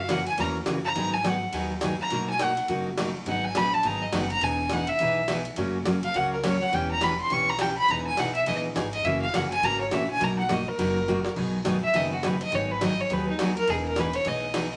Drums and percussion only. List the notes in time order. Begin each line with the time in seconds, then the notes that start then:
0.09 snare, hi-hat pedal, ride
0.27 ride
0.38 ride
0.66 snare, hi-hat pedal, ride
0.96 ride
1.24 snare, hi-hat pedal, ride
1.53 ride
1.81 snare, hi-hat pedal, ride
2.10 ride
2.39 snare, hi-hat pedal, ride
2.57 ride
2.68 ride
2.98 snare, hi-hat pedal, ride
3.26 ride
3.55 snare, hi-hat pedal, ride
3.83 ride
4.13 snare, hi-hat pedal, ride
4.30 ride
4.41 ride
4.70 snare, hi-hat pedal, ride
4.87 ride
4.99 ride
5.28 snare, hi-hat pedal, ride
5.45 ride
5.56 ride
5.86 snare, hi-hat pedal, ride
6.03 ride
6.14 ride
6.44 snare, hi-hat pedal, ride
6.73 ride
7.01 snare, hi-hat pedal, ride
7.30 ride
7.59 snare, hi-hat pedal, ride
7.88 ride
8.17 snare, hi-hat pedal, ride
8.35 ride
8.46 ride
8.76 snare, hi-hat pedal, ride
8.93 ride
9.05 ride
9.34 snare, hi-hat pedal, ride
9.52 ride
9.63 ride
9.91 snare, hi-hat pedal, ride
10.21 ride
10.49 snare, hi-hat pedal, ride
10.79 ride
11.08 hi-hat pedal
11.25 snare
11.36 kick, crash
11.65 snare, hi-hat pedal, ride
11.94 ride
12.23 snare, hi-hat pedal, ride
12.41 ride
12.52 ride
12.81 snare, hi-hat pedal, ride
13.10 ride
13.39 snare, hi-hat pedal, ride
13.57 ride
13.68 ride
13.96 snare, hi-hat pedal, ride
14.13 ride
14.25 ride
14.54 snare, hi-hat pedal, ride